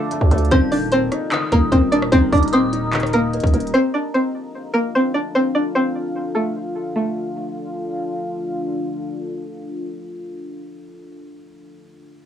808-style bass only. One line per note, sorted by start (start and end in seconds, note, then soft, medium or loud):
0.21 0.31 D2 loud
0.31 0.51 D2 loud
0.51 1.09 D#1 loud
1.52 1.71 D#1 loud
1.72 2.11 D#1 loud
2.13 2.32 D#1 loud
2.33 3.39 D#1 loud
3.43 3.53 D#1 loud
3.54 3.73 D#1 loud